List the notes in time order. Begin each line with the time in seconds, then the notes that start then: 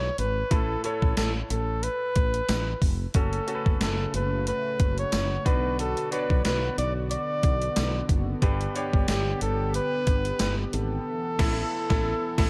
Already playing: E4 B4 C#5
0.18 G#1 B4, closed hi-hat
0.51 A1 A2 E4 A4 B4, kick, closed hi-hat
0.84 E4 A4 C#5, closed hi-hat
1.02 A1, kick
1.17 A1 A4, snare, closed hi-hat, tambourine
1.50 A1 A4, closed hi-hat
1.83 B4, closed hi-hat
2.16 A1, kick, closed hi-hat
2.34 closed hi-hat
2.49 A1, snare, closed hi-hat, tambourine
2.81 F1, kick, open hi-hat
3.14 F#1 C#3 A3 C#4 F#4 A4, kick, closed hi-hat
3.33 closed hi-hat
3.47 C#4 F#4 A4, closed hi-hat
3.55 B4
3.66 F#1, kick
3.80 F#1 A4, snare, closed hi-hat, tambourine
4.14 F#1 B4, closed hi-hat
4.47 B4, closed hi-hat
4.80 F#1, kick, closed hi-hat
4.98 C#5, closed hi-hat
5.12 F#1, snare, closed hi-hat, tambourine
5.45 B1 B2 D3 B3 D4 F#4 B4, kick, closed hi-hat
5.79 A4, closed hi-hat
5.97 closed hi-hat
6.11 D4 F#4 B4 C#5, closed hi-hat
6.19 D5
6.30 B1, kick
6.45 B1 B4, snare, closed hi-hat, tambourine
6.78 B1 D5, closed hi-hat
7.11 D5, closed hi-hat
7.43 B1, kick, closed hi-hat
7.62 closed hi-hat
7.76 B1, snare, closed hi-hat, tambourine
8.09 F#1, kick, closed hi-hat
8.42 G1 G2 D4 G4 B4, kick, closed hi-hat
8.61 closed hi-hat
8.75 D4 G4 C#5, closed hi-hat
8.93 G1, kick
9.08 G1 G4, snare, closed hi-hat, tambourine
9.41 G1 A4, closed hi-hat
9.74 B4, closed hi-hat
10.07 G1, kick, closed hi-hat
10.25 closed hi-hat
10.39 G1 B4, snare, closed hi-hat, tambourine
10.73 G#1 A4, closed hi-hat
11.07 E3 A4
11.39 A1 E4 A4, kick, snare, crash
11.90 A1 E4 A4, kick, snare
12.38 A1 E4 A4, kick, snare, crash